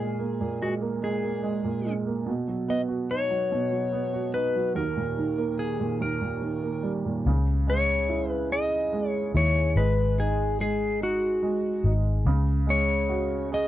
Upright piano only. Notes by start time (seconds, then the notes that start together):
Already playing: A#2
0.00 G#3
0.19 A#3
0.41 A#2
0.61 G#3
0.81 A#3
1.03 G#3
1.23 A#3
1.43 G#3
1.64 A#2
1.86 G#3
2.07 A#3
2.26 B2
2.48 F#3
2.68 B3
2.88 F#4
3.10 D#4
3.30 F#3
3.52 B2
3.72 F#3
3.92 B3
4.14 F#4
4.34 D#4
4.55 F#3
4.75 D#2
4.97 A#2
5.18 D#3
5.38 A#3
5.80 A#2
6.01 D#2
6.21 A#2
6.41 D#3
6.62 A#3
6.83 G3
7.05 A#2
7.27 C#3
7.67 G#3
8.09 E4
8.52 G#4
8.93 G#3
9.35 E4
9.77 G#3
10.18 D#4
10.60 G#3
11.01 D#4
11.43 G#3
11.85 D#4
12.27 C#3
12.67 G#3
13.09 F#4
13.52 G#4